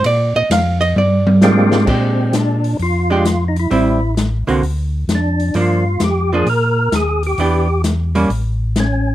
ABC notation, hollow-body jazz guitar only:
X:1
M:4/4
L:1/16
Q:"Swing" 1/4=131
K:Bbmix
V:1 name="Hollow-body jazz guitar"
d2 e2 f2 e2 d6- d z | [A,DG]6 z4 [A,DG]2 z4 | [G,C=E]2 z4 [D,B,C_G]2 z8 | [F,B,D]2 z4 [F,B,D]2 z8 |
[=E,=B,DG]2 z4 [G,_B,_D]2 z8 |]